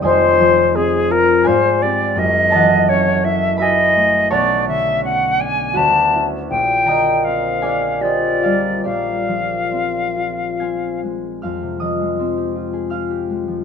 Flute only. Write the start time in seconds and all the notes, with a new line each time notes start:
0.05 C5
0.75 G#4
1.11 A#4
1.47 C5
1.82 D5
2.18 D#5
2.89 C#5
3.24 E5
3.60 D#5
4.32 D5
4.68 E5
5.04 F#5
5.40 G#5
5.77 A5
6.50 G5
7.24 F5
8.01 D5
8.85 F5